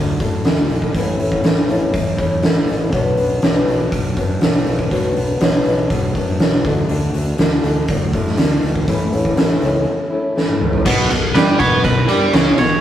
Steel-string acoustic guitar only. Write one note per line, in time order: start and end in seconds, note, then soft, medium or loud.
0.00 0.20 A3 soft
0.00 0.19 D4 medium
0.00 0.18 F#4 medium
0.19 0.44 A3 soft
0.19 0.45 D4 medium
0.19 0.45 F#4 medium
0.44 0.92 D3 medium
0.44 0.93 A3 medium
0.44 0.94 D4 medium
0.44 0.94 F#4 medium
0.94 1.42 A2 medium
0.94 1.43 E3 medium
0.94 1.20 A3 medium
0.94 1.19 C#4 medium
0.94 1.18 E4 medium
1.19 1.43 A3 soft
1.19 1.44 C#4 medium
1.19 1.44 E4 medium
1.43 1.93 A2 medium
1.43 1.94 E3 medium
1.43 1.70 A3 medium
1.43 1.68 C#4 medium
1.43 1.67 E4 medium
1.68 2.19 A3 soft
1.68 2.17 C#4 medium
1.68 2.16 E4 medium
2.17 2.42 A3 soft
2.17 2.43 C#4 medium
2.17 2.43 E4 medium
2.42 2.91 E3 medium
2.42 2.91 A3 medium
2.42 2.92 C#4 medium
2.42 2.92 E4 medium
2.92 3.42 B2 medium
2.92 3.43 F#3 medium
2.92 3.20 B3 medium
2.92 3.19 D4 medium
2.92 3.17 F#4 medium
3.18 3.43 B3 medium
3.18 3.44 D4 medium
3.18 3.45 F#4 medium
3.42 3.92 B2 medium
3.42 4.40 F#3 medium
3.42 3.68 B3 medium
3.42 3.68 D4 medium
3.42 3.67 F#4 medium
3.67 4.18 B3 soft
3.67 4.18 D4 medium
3.67 4.16 F#4 medium
4.17 4.40 B3 soft
4.17 4.42 D4 soft
4.17 4.43 F#4 medium
4.41 4.91 F#3 medium
4.41 4.90 B3 medium
4.41 4.92 D4 medium
4.41 4.93 F#4 medium
4.90 5.40 B2 medium
4.90 5.41 F#3 medium
4.90 5.17 B3 medium
4.90 5.17 D4 medium
4.90 5.15 F#4 medium
5.16 5.41 B3 soft
5.16 5.42 D4 medium
5.16 5.42 F#4 medium
5.41 5.90 B2 medium
5.41 6.39 F#3 medium
5.41 5.67 B3 medium
5.41 5.66 D4 medium
5.41 5.65 F#4 medium
5.66 6.16 B3 medium
5.66 6.16 D4 medium
5.66 6.14 F#4 medium
6.15 6.40 B3 medium
6.15 6.40 D4 medium
6.15 6.41 F#4 medium
6.40 6.63 F#3 medium
6.40 6.64 B3 medium
6.40 6.64 D4 medium
6.40 6.63 F#4 medium
6.64 6.87 D3 medium
6.64 6.89 A3 medium
6.64 6.89 D4 medium
6.64 6.90 F#4 medium
6.89 7.37 D3 medium
6.89 7.16 A3 medium
6.89 7.14 D4 medium
6.89 7.12 F#4 medium
7.14 7.39 A3 soft
7.14 7.39 D4 medium
7.14 7.40 F#4 medium
7.38 7.88 D3 medium
7.38 7.66 A3 medium
7.38 7.64 D4 medium
7.38 7.63 F#4 medium
7.64 8.14 A3 soft
7.64 8.13 D4 medium
7.64 8.12 F#4 medium
8.13 8.37 A3 medium
8.13 8.38 D4 soft
8.13 8.39 F#4 medium
8.37 8.86 D3 medium
8.37 8.86 A3 medium
8.37 8.87 D4 medium
8.37 8.87 F#4 medium
8.87 9.35 A2 medium
8.87 9.36 E3 medium
8.87 9.13 A3 medium
8.87 9.12 C#4 medium
8.87 9.10 E4 medium
9.11 9.36 A3 medium
9.11 9.37 C#4 medium
9.11 9.38 E4 medium
9.36 9.86 A2 medium
9.36 9.87 E3 medium
9.36 9.63 A3 medium
9.36 9.62 C#4 medium
9.36 9.61 E4 medium
9.62 10.12 A3 soft
9.62 10.11 C#4 medium
9.62 10.09 E4 medium
10.10 10.35 A3 medium
10.10 10.36 C#4 medium
10.10 10.36 E4 medium
10.35 10.83 E3 medium
10.35 10.84 A3 medium
10.35 10.84 C#4 medium
10.35 10.85 E4 medium